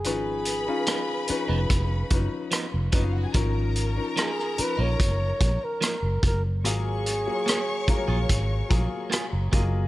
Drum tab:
HH |x-x-x-x-x-x-x-x-|x-x-x-x-x-x-x-x-|x-x-x-x-x-x-x-x-|
SD |----r-------r---|----rr------r---|----r-------r---|
BD |--------o-o---o-|o-------o-o---o-|------o-o-o---o-|